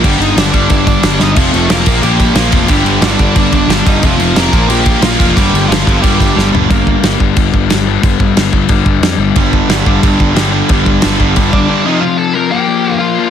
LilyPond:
<<
  \new Staff \with { instrumentName = "Lead electric guitar" } { \time 4/4 \key g \minor \tempo 4 = 180 <g g'>8 <ees' ees''>8 <d' d''>4 <d' d''>8 <d' d''>4 <ees' ees''>8 | <f f'>8 <a a'>8 <bes bes'>4 <g g'>4 <f f'>4 | <g g'>4 <d' d''>4 <d' d''>8 <d' d''>4 <ees' ees''>8 | <f f'>4 <bes bes'>4 <g g'>4 <f f'>4 |
<g g'>4 <f f'>4 <g g'>4. r8 | r1 | r1 | r1 |
r2 r8 <d' d''>4 <ees' ees''>8 | <f' f''>8 <a' a''>8 <bes' bes''>8 <g' g''>4. <f' f''>4 | }
  \new Staff \with { instrumentName = "Distorted electric guitar" } { \clef bass \time 4/4 \key g \minor <g, d g>4 <g, d g>8 <g, d g>8 <g, d g>4 <g, d g>8 <g, d g>8 | <f, c f>4 <f, c f>8 <bes, f bes>8 <bes, f bes>4 <bes, f bes>8 <bes, f bes>8 | <g, d g>4 <g, d g>8 <g, d g>8 <g, d g>4 <g, d g>8 <g, d g>8 | <f, c f>4 <f, c f>8 <bes, f bes>8 <bes, f bes>4 <bes, f bes>8 <bes, f bes>8 |
<g, d g>4 <g, d g>8 <g, d g>8 <g, d g>4 <g, d g>8 <g, d g>8 | r1 | r1 | <g, d g>4 <g, d g>8 <g, d g>8 <g, d g>4 <g, d g>8 <g, d g>8 |
<g, d g>4 <g, d g>8 <g, d g>8 <g, d g>4 <g, d g>8 <f, c f>8 | r1 | }
  \new Staff \with { instrumentName = "Overdriven electric guitar" } { \clef bass \time 4/4 \key g \minor <g, d g>4 <g, d g>8 <g, d g>8 <g, d g>4 <g, d g>8 <g, d g>8 | <f, c f>4 <f, c f>8 <bes, f bes>8 <bes, f bes>4 <bes, f bes>8 <bes, f bes>8 | <g, d g>4 <g, d g>8 <g, d g>8 <g, d g>4 <g, d g>8 <g, d g>8 | <f, c f>4 <f, c f>8 <bes, f bes>8 <bes, f bes>4 <bes, f bes>8 <bes, f bes>8 |
<g, d g>4 <g, d g>8 <g, d g>8 <g, d g>4 <g, d g>8 <g, d g>8 | <g, d g>4 <g, d g>8 <g, d g>8 <g, d g>4 <g, d g>8 <g, d g>8 | <g, d g>4 <g, d g>8 <g, d g>8 <g, d g>4 <g, d g>8 <g, d g>8 | <g, d g>4 <g, d g>8 <g, d g>8 <g, d g>4 <g, d g>8 <g, d g>8 |
<g, d g>4 <g, d g>8 <g, d g>8 <g, d g>4 <g, d g>8 <f, c f>8 | <f, c f>4 <f, c f>8 <bes, f bes>8 <bes, f bes>4 <bes, f bes>8 <bes, f bes>8 | }
  \new Staff \with { instrumentName = "Picked electric bass" } { \clef bass \time 4/4 \key g \minor g,,8 g,,8 g,,8 g,,8 g,,4 g,,8 g,,8 | f,,8 f,,8 f,,8 bes,,8 bes,,4 bes,,8 f,,8 | g,,8 g,,8 g,,8 g,,8 g,,4 g,,8 g,,8 | f,,8 f,,8 f,,8 bes,,8 bes,,4 bes,,8 f,,8 |
g,,8 g,,8 g,,8 g,,8 g,,4 g,,8 g,,8 | g,,4 g,,8 g,,8 g,,8 g,,8 g,,4 | g,,8 g,,8 g,,8 g,,8 g,,8 g,,8 f,8 g,,8 | g,,4 g,,8 g,,8 g,,8 g,,8 g,,4 |
g,,8 g,,8 g,,8 g,,8 g,,8 g,,8 r4 | r1 | }
  \new DrumStaff \with { instrumentName = "Drums" } \drummode { \time 4/4 <cymc bd>8 cymc8 <cymc sn>8 <cymc bd>8 <cymc bd>8 <cymc bd>8 <cymc sn>8 sn8 | <cymc bd>8 cymc8 <cymc sn>8 <cymc bd>8 cymc8 <cymc bd>8 <cymc sn>8 <cymc bd>8 | <cymc bd>8 cymc8 <cymc sn>8 <cymc bd>8 <cymc bd>8 <cymc bd>8 <cymc sn>8 <cymc bd>8 | <cymc bd>8 cymc8 <cymc sn>8 <cymc bd>8 cymc8 <cymc bd>8 <cymc sn>8 <cymc bd>8 |
<cymc bd>8 cymc8 <cymc sn>8 <cymc bd>8 <cymc bd>8 <cymc bd>8 sn8 tomfh8 | <cymc bd>8 bd8 <cymc sn>8 bd8 <cymc bd>8 bd8 <cymc sn>4 | <cymc bd>8 bd8 <cymc sn>8 bd8 <cymc bd>8 bd8 <cymc sn>4 | <cymc bd>8 bd8 <cymc sn>8 bd8 <cymc bd>8 bd8 <cymc sn>4 |
<cymc bd>8 bd8 <cymc sn>8 bd8 <cymc bd>8 bd8 r4 | r4 r4 r4 r4 | }
>>